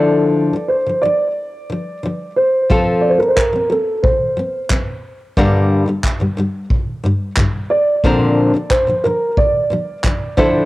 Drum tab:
CP |--------|--x---x-|--x---x-|--x---x-|
BD |--------|o-o-o-o-|o-o-o-o-|o-o-o-oo|